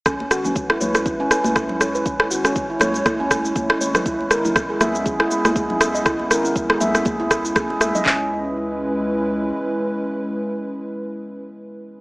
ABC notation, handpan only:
X:1
M:4/4
L:1/16
Q:"Swing 16ths" 1/4=120
K:C#m
V:1 name="Handpan"
C z F C z E c z E C z C E z c B | C z F C z E c z E C z C E z c B | E z ^A E z G e z G E z E G z e d | E z ^A E z G e z G E z E G z e d |
C2 z12 z2 | z16 |]